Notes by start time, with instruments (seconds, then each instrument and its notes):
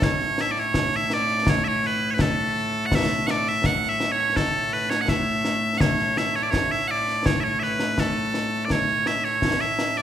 Already playing: bagpipes A2 A3
0.02 bagpipes C#5, concert bass drum, snare
0.20 snare
0.38 bagpipes E5, snare
0.51 bagpipes D5
0.56 bagpipes C#5, snare
0.74 concert bass drum, snare
0.93 bagpipes E5, snare
1.10 bagpipes D5, snare
1.28 snare
1.47 bagpipes C#5, concert bass drum, snare
1.64 bagpipes C#5 E5
1.83 bagpipes B4, snare
2.11 bagpipes B4 C#5
2.19 bagpipes A4, concert bass drum, snare
2.86 bagpipes F#5
2.92 bagpipes E5, concert bass drum, snare
3.10 snare
3.27 bagpipes D5 F#5, snare
3.46 bagpipes E5, snare
3.64 bagpipes F#5, concert bass drum, snare
3.83 snare
3.89 bagpipes E5
4.00 snare
4.12 bagpipes C#5
4.19 snare
4.36 bagpipes A4, concert bass drum, snare
4.73 bagpipes B4, snare
4.90 bagpipes C#5, snare
5.01 bagpipes F#5
5.08 bagpipes E5, concert bass drum, snare
5.45 snare
5.78 bagpipes C#5 F#5, concert bass drum, snare
5.99 snare
6.17 bagpipes E5, snare
6.35 bagpipes C#5, snare
6.43 bagpipes D5
6.50 bagpipes C#5, concert bass drum, snare
6.71 bagpipes E5, snare
6.87 bagpipes D5 F#5
7.08 snare
7.26 bagpipes C#5, concert bass drum, snare
7.41 bagpipes C#5 E5
7.60 bagpipes B4 E5, snare
7.80 snare
7.98 bagpipes A4, concert bass drum, snare
8.34 snare
8.65 bagpipes D5
8.70 bagpipes C#5, concert bass drum, snare
8.88 snare
9.06 bagpipes E5, snare
9.24 bagpipes C#5, snare
9.42 concert bass drum, snare
9.60 bagpipes E5, snare
9.79 snare
9.97 bagpipes D5, snare